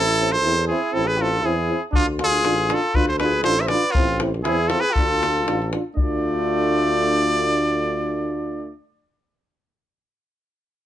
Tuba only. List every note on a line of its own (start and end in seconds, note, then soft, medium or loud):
0.00 0.46 A1 loud
0.44 0.72 E2 loud
0.95 1.45 A1 loud
1.44 1.72 E2 loud
1.95 2.48 D2 medium
2.46 2.73 A1 loud
2.95 3.47 D2 medium
3.46 3.73 A1 medium
3.96 4.48 A1 medium
4.47 4.74 E2 loud
4.97 5.49 D2 medium
5.48 5.75 A1 medium
5.98 8.75 D2 medium